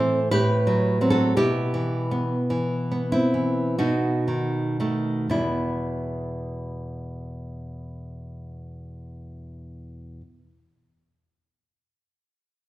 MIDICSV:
0, 0, Header, 1, 2, 480
1, 0, Start_track
1, 0, Key_signature, 1, "minor"
1, 0, Tempo, 1029160
1, 634, Time_signature, 3, 2, 24, 8
1, 634, Tempo, 1138520
1, 1114, Tempo, 1290323
1, 1594, Tempo, 1503759
1, 3034, Tempo, 1522843
1, 4415, End_track
2, 0, Start_track
2, 0, Title_t, "Nylon-string guitar"
2, 0, Program_c, 0, 24
2, 0, Note_on_c, 0, 45, 65
2, 0, Note_on_c, 0, 52, 45
2, 0, Note_on_c, 0, 60, 46
2, 0, Note_on_c, 0, 69, 65
2, 0, Note_on_c, 0, 72, 76
2, 89, Note_off_c, 0, 60, 0
2, 133, Note_off_c, 0, 45, 0
2, 137, Note_off_c, 0, 69, 0
2, 141, Note_off_c, 0, 72, 0
2, 146, Note_on_c, 0, 71, 86
2, 147, Note_off_c, 0, 52, 0
2, 149, Note_on_c, 0, 45, 63
2, 152, Note_on_c, 0, 67, 62
2, 312, Note_on_c, 0, 54, 46
2, 466, Note_off_c, 0, 54, 0
2, 471, Note_on_c, 0, 54, 47
2, 473, Note_on_c, 0, 60, 48
2, 492, Note_off_c, 0, 67, 0
2, 494, Note_off_c, 0, 71, 0
2, 515, Note_on_c, 0, 69, 75
2, 521, Note_on_c, 0, 66, 52
2, 619, Note_off_c, 0, 45, 0
2, 619, Note_off_c, 0, 54, 0
2, 620, Note_off_c, 0, 60, 0
2, 631, Note_off_c, 0, 66, 0
2, 636, Note_off_c, 0, 69, 0
2, 637, Note_on_c, 0, 47, 58
2, 638, Note_on_c, 0, 67, 81
2, 644, Note_on_c, 0, 64, 61
2, 794, Note_on_c, 0, 52, 45
2, 952, Note_on_c, 0, 59, 41
2, 1050, Note_off_c, 0, 52, 0
2, 1115, Note_on_c, 0, 52, 48
2, 1206, Note_off_c, 0, 59, 0
2, 1269, Note_on_c, 0, 59, 43
2, 1331, Note_off_c, 0, 67, 0
2, 1335, Note_off_c, 0, 64, 0
2, 1345, Note_on_c, 0, 64, 63
2, 1351, Note_on_c, 0, 60, 46
2, 1362, Note_off_c, 0, 52, 0
2, 1427, Note_on_c, 0, 52, 35
2, 1527, Note_off_c, 0, 59, 0
2, 1581, Note_off_c, 0, 47, 0
2, 1582, Note_off_c, 0, 60, 0
2, 1584, Note_off_c, 0, 64, 0
2, 1593, Note_on_c, 0, 66, 63
2, 1594, Note_on_c, 0, 47, 50
2, 1595, Note_off_c, 0, 52, 0
2, 1597, Note_on_c, 0, 63, 47
2, 1750, Note_on_c, 0, 51, 35
2, 1913, Note_off_c, 0, 51, 0
2, 1916, Note_on_c, 0, 51, 37
2, 1918, Note_on_c, 0, 57, 42
2, 2065, Note_off_c, 0, 47, 0
2, 2065, Note_off_c, 0, 66, 0
2, 2067, Note_off_c, 0, 51, 0
2, 2067, Note_off_c, 0, 63, 0
2, 2068, Note_off_c, 0, 57, 0
2, 2075, Note_on_c, 0, 40, 47
2, 2075, Note_on_c, 0, 47, 35
2, 2078, Note_on_c, 0, 55, 35
2, 2079, Note_on_c, 0, 59, 36
2, 2079, Note_on_c, 0, 64, 52
2, 3635, Note_off_c, 0, 47, 0
2, 3636, Note_off_c, 0, 40, 0
2, 3638, Note_off_c, 0, 64, 0
2, 3639, Note_off_c, 0, 55, 0
2, 3639, Note_off_c, 0, 59, 0
2, 4415, End_track
0, 0, End_of_file